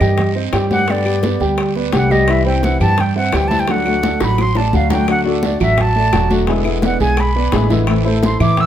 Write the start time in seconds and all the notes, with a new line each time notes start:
Already playing: D#3 G3 C4 G4 D#5
0.01 G2 G3 G4 G5, high conga, low conga, short guiro, claves
0.18 muted nylon-string guitar stroke, high bongo, high conga, low conga, long guiro
0.36 C4 C5 D#5, high conga
0.53 G2 D#3 G3 C4 G4 G5, high bongo, low bongo, high conga, short guiro, claves
0.71 D#3 G3 C4 G4 F#5, high conga, short guiro
0.88 D3 G3 B3 G4 D5 G5, high bongo, high conga, long guiro
1.05 G3 B3 G4, high bongo, high conga, claves
1.23 B3 B4 D5, high bongo, high conga, short guiro
1.40 D2 G3 G4 G5, high bongo, high conga, short guiro
1.58 muted nylon-string guitar stroke, high bongo, high conga, long guiro, claves
1.75 B3 B4 D5, high bongo, high conga
1.92 C2 D3 G3 B3 G4 F#5 G5, high bongo, low bongo, high conga, short guiro
2.10 G3 B3 G4 D#5 G5, high conga, short guiro
2.28 C3 E3 G3 C4 E4 E5, high bongo, high conga, long guiro, claves
2.45 E3 G3 C4 E4 C5 E5 G5, high conga
2.63 F#5, high bongo, high conga, short guiro
2.80 G2 G3 G4 G5 A5, high conga, low conga, short guiro, claves
2.98 G5, muted nylon-string guitar stroke, high bongo, high conga, low conga, long guiro
3.16 C4 C5 E5 F#5, high conga
3.32 D2 E3 G3 C4 E4 G4 G5, high bongo, low bongo, high conga, short guiro, claves
3.48 G3 C4 E4 A5, high conga, short guiro
3.52 E3
3.60 G5
3.67 D3 F#3 A3 D4 F#4 F#5, high bongo, high conga, long guiro
3.85 A3 D4 F#4, high bongo, high conga, claves
4.03 A3 A4 D5, high bongo, high conga, short guiro
4.20 A1 F#3 F#4 F#5 B5, high bongo, short guiro
4.38 C6, muted nylon-string guitar stroke, low bongo, high conga, long guiro, claves
4.55 A3 A4 D5 A5, low bongo, high conga
4.72 D2 D3 F#3 A3 D4 F#4 F5 F#5, high conga, short guiro
4.90 F#3 A3 D4 F#4 F#5 G5, low bongo, high conga, short guiro
5.07 D3 A3 D4 F#4 F#5, high bongo, long guiro, claves
5.24 A3 D4 F#4 A4 D5, high conga
5.43 D5, high bongo, high conga, short guiro
5.60 A1 F#3 F#4 E5 F#5, high conga, low conga, short guiro, claves
5.78 A5, muted nylon-string guitar stroke, high bongo, high conga, low conga, long guiro
5.95 A3 A4 D5, high conga
6.12 E1 D3 F#3 A3 D4 F#4 F#5, high bongo, low bongo, high conga, short guiro, claves
6.30 A3 D4 F#4, high conga, short guiro
6.47 B2 D3 G#3 B3 E4 G#4 G#5, high bongo, high conga, long guiro
6.65 D3 G#3 B3 E4, high bongo, high conga, claves
6.82 B3 B4 D5 F#5, high bongo, high conga, short guiro
7.00 B1 G#3 G#4 G#5, high bongo, high conga, short guiro
7.17 B5, muted nylon-string guitar stroke, high bongo, high conga, long guiro, claves
7.35 B3 B4 D5, high bongo, high conga
7.52 A1 D3 G#3 B3 E4 G#4 G#5, high bongo, low bongo, high conga, short guiro
7.70 D3 E3 G#3 B3 E4 E5, high conga, short guiro
7.87 E3 A3 C4 E4, high bongo, high conga, long guiro, claves
8.05 A3 C4 E4 A4 C5, high conga
8.23 C6, high bongo, high conga, short guiro
8.40 A2 E3 E4 E5 D6, high conga, low conga, short guiro, claves
8.57 E6, muted nylon-string guitar stroke, high bongo, high conga, low conga, long guiro